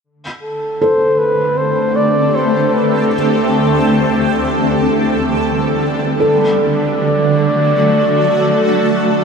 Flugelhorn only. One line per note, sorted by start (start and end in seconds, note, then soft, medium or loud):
0.42 0.83 A4 medium
0.82 1.20 C5 medium
1.19 1.59 B4 medium
1.57 1.97 C5 medium
1.96 2.37 D5 medium
2.35 2.75 C5 medium
2.74 3.13 B4 medium
6.21 9.24 D5 medium